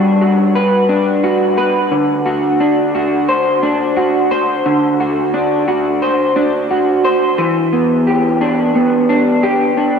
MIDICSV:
0, 0, Header, 1, 2, 480
1, 0, Start_track
1, 0, Key_signature, 1, "minor"
1, 0, Tempo, 682283
1, 1354, Time_signature, 4, 2, 24, 8
1, 7030, End_track
2, 0, Start_track
2, 0, Title_t, "Clean electric guitar"
2, 0, Program_c, 0, 27
2, 0, Note_on_c, 0, 55, 88
2, 0, Note_on_c, 0, 62, 60
2, 0, Note_on_c, 0, 66, 61
2, 0, Note_on_c, 0, 71, 70
2, 147, Note_off_c, 0, 66, 0
2, 150, Note_on_c, 0, 66, 58
2, 382, Note_off_c, 0, 71, 0
2, 390, Note_on_c, 0, 71, 70
2, 623, Note_off_c, 0, 62, 0
2, 625, Note_on_c, 0, 62, 60
2, 867, Note_off_c, 0, 66, 0
2, 870, Note_on_c, 0, 66, 61
2, 1100, Note_off_c, 0, 71, 0
2, 1108, Note_on_c, 0, 71, 71
2, 1347, Note_on_c, 0, 50, 84
2, 1354, Note_off_c, 0, 55, 0
2, 1409, Note_off_c, 0, 71, 0
2, 1585, Note_off_c, 0, 66, 0
2, 1588, Note_on_c, 0, 66, 61
2, 1829, Note_off_c, 0, 62, 0
2, 1831, Note_on_c, 0, 62, 65
2, 2066, Note_off_c, 0, 66, 0
2, 2074, Note_on_c, 0, 66, 60
2, 2312, Note_on_c, 0, 72, 69
2, 2549, Note_off_c, 0, 62, 0
2, 2552, Note_on_c, 0, 62, 58
2, 2782, Note_off_c, 0, 66, 0
2, 2790, Note_on_c, 0, 66, 65
2, 3025, Note_off_c, 0, 72, 0
2, 3033, Note_on_c, 0, 72, 71
2, 3274, Note_off_c, 0, 50, 0
2, 3277, Note_on_c, 0, 50, 85
2, 3510, Note_off_c, 0, 66, 0
2, 3519, Note_on_c, 0, 66, 59
2, 3752, Note_off_c, 0, 62, 0
2, 3755, Note_on_c, 0, 62, 63
2, 3986, Note_off_c, 0, 66, 0
2, 3995, Note_on_c, 0, 66, 60
2, 4227, Note_off_c, 0, 72, 0
2, 4236, Note_on_c, 0, 72, 63
2, 4471, Note_off_c, 0, 62, 0
2, 4474, Note_on_c, 0, 62, 62
2, 4709, Note_off_c, 0, 66, 0
2, 4718, Note_on_c, 0, 66, 56
2, 4948, Note_off_c, 0, 72, 0
2, 4956, Note_on_c, 0, 72, 70
2, 5194, Note_on_c, 0, 52, 81
2, 5215, Note_off_c, 0, 50, 0
2, 5253, Note_off_c, 0, 72, 0
2, 5254, Note_off_c, 0, 66, 0
2, 5436, Note_on_c, 0, 59, 53
2, 5676, Note_on_c, 0, 67, 59
2, 5914, Note_off_c, 0, 62, 0
2, 5917, Note_on_c, 0, 62, 58
2, 6153, Note_off_c, 0, 59, 0
2, 6156, Note_on_c, 0, 59, 58
2, 6387, Note_off_c, 0, 62, 0
2, 6396, Note_on_c, 0, 62, 58
2, 6626, Note_off_c, 0, 67, 0
2, 6634, Note_on_c, 0, 67, 63
2, 6866, Note_off_c, 0, 62, 0
2, 6874, Note_on_c, 0, 62, 58
2, 7030, Note_off_c, 0, 52, 0
2, 7030, Note_off_c, 0, 59, 0
2, 7030, Note_off_c, 0, 62, 0
2, 7030, Note_off_c, 0, 67, 0
2, 7030, End_track
0, 0, End_of_file